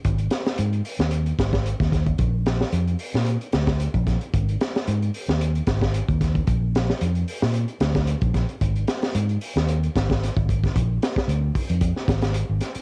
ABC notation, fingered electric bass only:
X:1
M:4/4
L:1/16
Q:"Swing 16ths" 1/4=112
K:Bbmix
V:1 name="Fingered electric bass" clef=bass
A,,,2 z2 A,,2 z E,,3 A,,,3 E,,3 | B,,,4 F,,2 z B,,2 z D,,3 B,,,2 z | A,,,2 z2 A,,2 z E,,3 A,,,3 E,,3 | B,,,4 F,,2 z B,,2 z D,,3 B,,,2 z |
A,,,2 z2 A,,2 z E,,3 A,,,3 A,,,3 | B,,,2 z2 D,,2 z F,,2 z A,,,3 A,,, z2 |]